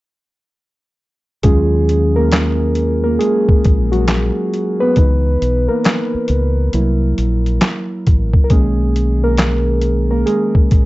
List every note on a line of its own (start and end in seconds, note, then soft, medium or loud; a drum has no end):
1.43 3.17 D#2 medium
1.43 3.92 F#3 medium
1.43 2.13 G#3 medium
1.43 4.93 C#4 medium
1.43 4.93 F4 medium
1.43 2.18 G#4 medium
1.43 kick loud
1.43 closed hi-hat medium
1.89 closed hi-hat medium
2.16 3.02 A#3 medium
2.16 3.01 A#4 medium
2.32 snare loud
2.32 clap medium
2.32 closed hi-hat medium
2.75 closed hi-hat medium
3.04 3.20 A#3 medium
3.04 3.19 A#4 medium
3.19 3.89 G#3 medium
3.19 3.88 G#4 medium
3.19 closed hi-hat medium
3.49 kick medium
3.65 4.29 A#1 medium
3.65 kick medium
3.65 closed hi-hat medium
3.92 4.78 F#3 medium
3.92 4.83 F#4 medium
3.92 closed hi-hat soft
4.08 snare loud
4.08 clap medium
4.08 closed hi-hat medium
4.54 closed hi-hat medium
4.80 4.96 B3 medium
4.80 5.65 B4 loud
4.96 5.36 C#2 medium
4.96 6.69 E3 soft
4.96 6.70 B3 soft
4.96 6.70 D#4 medium
4.96 kick medium
4.96 closed hi-hat medium
5.42 5.67 B1 medium
5.42 closed hi-hat medium
5.68 5.84 A#3 medium
5.68 5.82 A#4 medium
5.84 6.73 A#3 medium
5.84 8.01 A#4 medium
5.84 snare loud
5.84 clap medium
5.84 closed hi-hat medium
6.14 muted fingered electric bass stroke soft
6.28 6.68 C#2 medium
6.28 closed hi-hat medium
6.73 7.13 C2 loud
6.73 8.02 F#3 medium
6.73 8.02 A#3 soft
6.73 8.02 E4 medium
6.73 closed hi-hat medium
7.18 7.57 A#1 medium
7.18 closed hi-hat medium
7.46 closed hi-hat soft
7.61 snare loud
7.61 clap medium
7.61 closed hi-hat medium
8.07 8.32 A1 medium
8.07 kick medium
8.07 closed hi-hat medium
8.34 kick medium
8.44 8.50 A#4 medium
8.50 10.23 B1 loud
8.50 9.78 D#3 medium
8.50 9.19 G#3 medium
8.50 9.23 A#3 medium
8.50 9.79 C#4 medium
8.50 9.25 G#4 medium
8.50 kick loud
8.50 closed hi-hat medium
8.96 closed hi-hat medium
9.24 10.07 A#3 medium
9.24 10.07 A#4 medium
9.37 snare loud
9.37 clap medium
9.37 closed hi-hat medium
9.81 closed hi-hat medium
10.11 10.19 A#3 medium
10.11 10.18 A#4 medium
10.26 10.85 G#3 medium
10.26 10.85 G#4 medium
10.26 closed hi-hat medium
10.55 kick medium
10.71 10.85 A#1 medium
10.71 kick medium
10.71 closed hi-hat medium